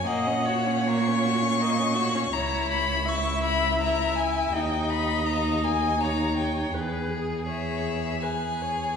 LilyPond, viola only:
\new Staff \with { instrumentName = "Viola" } { \time 3/4 \key ges \major \tempo 4 = 81 ees''8 des''4. ees''8 des''8 | \key e \lydian cis''4 e''2 | dis''2 cis''4 | b'8 gis'8 cis''4 b'8 cis''8 | }